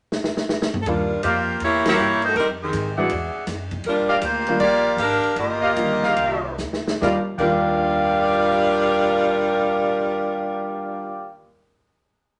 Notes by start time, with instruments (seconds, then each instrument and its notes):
0.12 snare
0.24 snare
0.37 snare
0.49 snare
0.62 snare
0.74 mid tom
0.82 upright bass D#2, saxophone section A4
0.86 grand piano D#3 G3 A#3 D4 F4, saxophone section G3 D4 F4 A#4, ride
1.23 upright bass F2, saxophone section A#3 F4 G4 C5, trumpet section G4 D5 D#5 F5, hi-hat pedal, ride
1.60 upright bass E2, saxophone section A#3 E4 G4, ride
1.65 saxophone section C#5
1.85 grand piano E3 G3 A#3 C#4 F#4, snare, ride
1.89 saxophone section A#3 E4 G4 C#5
1.98 upright bass G2, trumpet section A#4 C#5 E5 G5, hi-hat pedal
2.22 saxophone section A3 D#4 F#4 C5, ride
2.35 upright bass F2, saxophone section G3 C4 D#4 A#4, ride
2.62 saxophone section D#3 C4 G4 G#4
2.73 upright bass G#2, hi-hat pedal, ride
2.97 grand piano E3 G#3 B3 D4 F#4, trumpet section G#4 D5 E5 F#5
3.09 upright bass E2, ride
3.36 muted upright bass stroke
3.47 upright bass F#2, snare, hi-hat pedal, ride
3.71 kick, ride
3.84 upright bass D#2, saxophone section G3 F4 A#4, ride
3.88 saxophone section D4
4.08 trumpet section G4 D5 D#5 F5
4.21 upright bass D2, saxophone section A#3 F4 G4 C5, hi-hat pedal, ride
4.47 grand piano D#3 G3 A#3 D4 F4, ride
4.60 upright bass A#1, saxophone section A#3 F4 G4 D5, ride
4.97 upright bass G#1, saxophone section D4 G4 A#4 F5, hi-hat pedal, ride
5.23 muted upright bass stroke, ride
5.36 upright bass G1, saxophone section A#3 F4 G4 D#5, ride
5.61 trumpet section G4 D5 D#5 F5
5.75 upright bass A#1, grand piano D3 D#3 G3 A#3 F4, hi-hat pedal, ride
6.02 trumpet section G4 A#4 D#5 F5, snare
6.17 upright bass C2, ride
6.58 upright bass D2, snare, hi-hat pedal
6.73 snare
6.87 snare
7.02 upright bass D#2, grand piano D#2 D#3 G3 D4 F4, saxophone section G3 D4 F4 A#4, trumpet section G4 D5 D#5 F5, kick, snare
7.38 upright bass D#2, grand piano D#2 D#3 G3 D4, saxophone section G3 D4 F4 A#4, trumpet section G4 D5 F5 G5, kick, crash
7.42 grand piano F4